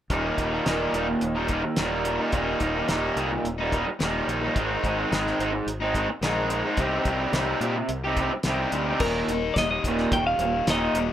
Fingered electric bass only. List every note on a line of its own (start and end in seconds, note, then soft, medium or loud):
0.10 0.30 D#1 medium
0.38 0.58 D#1 medium
0.66 0.86 D#1 medium
0.93 1.14 D#1 medium
1.22 1.62 D#1 medium
1.78 2.18 D#1 medium
2.33 2.53 D#1 medium
2.61 2.81 D#1 medium
2.89 3.09 D#1 medium
3.16 3.36 C2 medium
3.44 3.84 D#1 medium
4.01 4.20 D#1 medium
4.28 4.48 A#1 medium
4.56 4.76 G#1 medium
4.83 5.03 G#1 medium
5.11 5.31 G#1 medium
5.39 5.59 G#1 medium
5.66 6.07 G#1 medium
6.21 6.62 A#1 medium
6.77 6.97 C2 medium
7.05 7.26 C2 medium
7.33 7.53 C2 medium
7.61 7.81 A#2 medium
7.89 8.29 C2 medium
8.45 8.65 C2 medium
8.72 8.93 D2 medium
9.00 9.21 D#1 medium
9.28 9.49 D#1 medium
9.56 9.77 D#1 medium
9.84 10.05 D#1 medium
10.11 10.33 D#1 medium
10.39 10.60 D#1 medium
10.67 10.88 D#1 medium
10.94 11.13 D#1 medium